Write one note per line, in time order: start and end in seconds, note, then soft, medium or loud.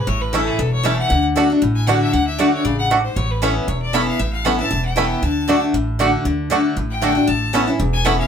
0.07 0.48 A1 loud
0.07 0.56 A2 loud
0.07 0.23 C#5 loud
0.21 0.35 B4 medium
0.33 0.58 E3 medium
0.33 0.43 A3 medium
0.33 0.58 A3 loud
0.33 0.40 A3 medium
0.33 0.58 C#4 loud
0.33 0.40 C#4 medium
0.33 0.43 E4 medium
0.33 0.59 E4 loud
0.33 0.40 E4 medium
0.33 0.48 A4 medium
0.33 0.43 C#5 medium
0.33 0.43 A5 loud
0.47 0.60 G#4 loud
0.59 1.00 E1 medium
0.59 1.08 E2 loud
0.59 0.72 A4 medium
0.73 0.86 C#5 loud
0.83 1.09 E3 medium
0.83 0.94 A3 loud
0.83 1.09 A3 loud
0.83 0.91 A3 medium
0.83 1.09 C#4 loud
0.83 0.91 C#4 medium
0.83 0.95 E4 medium
0.83 1.10 E4 medium
0.83 0.92 E4 medium
0.83 0.95 C#5 loud
0.83 0.98 E5 loud
0.83 0.95 A5 loud
0.99 1.23 F#5 loud
1.10 1.52 D2 loud
1.10 1.34 D3 medium
1.36 1.49 D3 loud
1.36 1.46 A3 medium
1.36 1.50 A3 medium
1.36 1.43 A3 medium
1.36 1.50 D4 loud
1.36 1.43 D4 medium
1.36 1.46 F#4 loud
1.36 1.49 F#4 loud
1.36 1.43 F#4 medium
1.36 1.46 D5 medium
1.36 1.47 F#5 loud
1.50 1.62 D4 medium
1.50 1.61 F#4 medium
1.62 2.03 A1 medium
1.62 2.11 A2 medium
1.75 1.88 G#5 loud
1.87 2.12 D3 loud
1.87 1.98 A3 medium
1.87 2.13 A3 medium
1.87 1.94 A3 medium
1.87 2.13 D4 loud
1.87 1.94 D4 medium
1.87 1.98 F#4 medium
1.87 1.95 F#4 medium
1.87 2.13 F#4 loud
1.87 1.98 D5 medium
1.87 2.00 F#5 medium
1.87 1.98 F#5 loud
2.01 2.14 E5 loud
2.13 2.55 D2 loud
2.13 2.37 D3 medium
2.13 2.26 F#5 loud
2.27 2.40 E5 medium
2.38 2.63 D3 loud
2.38 2.49 A3 medium
2.38 2.64 A3 loud
2.38 2.46 A3 medium
2.38 2.64 D4 loud
2.38 2.46 D4 medium
2.38 2.49 F#4 loud
2.38 2.46 F#4 medium
2.38 2.64 F#4 medium
2.38 2.52 D5 medium
2.38 2.49 D5 loud
2.38 2.50 F#5 medium
2.53 2.66 C#5 loud
2.64 3.06 A1 medium
2.64 2.89 C#3 medium
2.64 2.78 D5 medium
2.79 2.86 F#5 loud
2.90 3.15 G#2 medium
2.90 3.00 A3 medium
2.90 2.97 A3 medium
2.90 2.97 D4 medium
2.90 3.01 F#4 medium
2.90 2.98 F#4 medium
2.90 3.01 D5 medium
2.90 3.01 F#5 loud
3.04 3.18 C5 medium
3.16 3.57 A1 loud
3.16 3.66 A2 medium
3.16 3.32 C#5 medium
3.31 3.44 B4 medium
3.42 3.67 E3 loud
3.42 3.49 A3 medium
3.42 3.67 B3 loud
3.42 3.52 C#4 medium
3.42 3.67 C#4 loud
3.42 3.49 C#4 medium
3.42 3.49 E4 medium
3.42 3.68 E4 loud
3.42 3.58 G#4 medium
3.42 3.52 A4 loud
3.42 3.52 E5 medium
3.42 3.52 B5 loud
3.56 3.69 B4 loud
3.68 4.09 E1 medium
3.68 4.17 E2 loud
3.68 3.81 C#5 medium
3.82 3.95 D5 loud
3.93 4.18 E3 loud
3.93 4.00 A3 medium
3.93 4.18 B3 loud
3.93 4.03 C#4 medium
3.93 4.19 C#4 loud
3.93 4.00 C#4 medium
3.93 4.01 E4 medium
3.93 4.19 E4 loud
3.93 4.04 A4 medium
3.93 4.07 E5 loud
3.93 4.04 E5 loud
3.93 4.04 B5 loud
4.08 4.21 F5 loud
4.19 4.60 A1 medium
4.19 4.69 A2 medium
4.19 4.32 E5 medium
4.33 4.46 F5 loud
4.45 4.59 E3 medium
4.45 4.52 A3 medium
4.45 4.59 B3 loud
4.45 4.55 C#4 medium
4.45 4.52 C#4 medium
4.45 4.59 C#4 loud
4.45 4.52 E4 medium
4.45 4.57 E4 loud
4.45 4.55 A4 medium
4.45 4.55 E5 medium
4.45 4.59 F#5 medium
4.45 4.55 B5 loud
4.59 4.71 C#4 medium
4.59 4.70 E4 medium
4.59 4.83 A5 loud
4.71 5.12 E1 medium
4.71 5.20 E2 loud
4.85 5.24 G5 loud
4.96 5.21 E3 medium
4.96 5.03 A3 medium
4.96 5.21 B3 medium
4.96 5.06 C#4 loud
4.96 5.22 C#4 medium
4.96 5.03 C#4 medium
4.96 5.04 E4 medium
4.96 5.22 E4 loud
4.96 5.06 A4 loud
4.96 5.07 E5 loud
4.96 5.07 B5 loud
5.22 5.63 D2 medium
5.22 5.46 D3 medium
5.22 5.62 A5 loud
5.48 5.72 D3 medium
5.48 5.58 A3 medium
5.48 5.73 A3 loud
5.48 5.55 A3 medium
5.48 5.73 D4 medium
5.48 5.55 D4 medium
5.48 5.58 F#4 medium
5.48 5.55 F#4 medium
5.48 5.73 F#4 loud
5.48 5.58 D5 medium
5.48 5.58 F#5 loud
5.74 6.15 A1 medium
5.74 6.23 A2 medium
5.99 6.24 D3 medium
5.99 6.09 A3 medium
5.99 6.24 A3 loud
5.99 6.06 A3 medium
5.99 6.25 D4 loud
5.99 6.06 D4 medium
5.99 6.09 F#4 medium
5.99 6.06 F#4 medium
5.99 6.25 F#4 loud
5.99 6.10 D5 loud
5.99 6.10 F#5 loud
6.25 6.66 D2 medium
6.25 6.49 D3 medium
6.50 6.75 D3 loud
6.50 6.60 A3 medium
6.50 6.75 A3 medium
6.50 6.57 A3 medium
6.50 6.76 D4 loud
6.50 6.58 D4 medium
6.50 6.61 F#4 medium
6.50 6.58 F#4 medium
6.50 6.76 F#4 loud
6.50 6.61 D5 medium
6.50 6.61 F#5 loud
6.77 7.18 A1 medium
6.77 7.26 A2 medium
6.90 7.29 G5 loud
7.02 7.16 D3 loud
7.02 7.12 A3 loud
7.02 7.16 A3 loud
7.02 7.09 A3 medium
7.02 7.16 D4 loud
7.02 7.09 D4 medium
7.02 7.12 F#4 loud
7.02 7.09 F#4 medium
7.02 7.14 F#4 loud
7.02 7.12 D5 loud
7.02 7.12 F#5 loud
7.15 7.28 D4 medium
7.15 7.27 F#4 medium
7.27 7.69 A1 loud
7.27 7.77 A2 loud
7.27 7.68 A5 loud
7.53 7.67 E3 medium
7.53 7.60 A3 medium
7.53 7.67 B3 loud
7.53 7.63 C#4 medium
7.53 7.68 C#4 loud
7.53 7.60 C#4 medium
7.53 7.61 E4 medium
7.53 7.66 E4 loud
7.53 7.64 A4 loud
7.53 7.64 E5 loud
7.53 7.64 B5 loud
7.67 7.80 C#4 medium
7.67 7.79 E4 medium
7.80 8.20 E1 medium
7.80 8.27 E2 loud
7.93 8.07 G#5 loud
8.04 8.27 E3 loud
8.04 8.12 A3 medium
8.04 8.27 B3 loud
8.04 8.15 C#4 loud
8.04 8.27 C#4 loud
8.04 8.12 C#4 medium
8.04 8.12 E4 medium
8.04 8.27 E4 loud
8.04 8.15 A4 medium
8.04 8.15 E5 loud
8.04 8.18 F#5 loud
8.04 8.15 B5 loud
8.19 8.27 F5 loud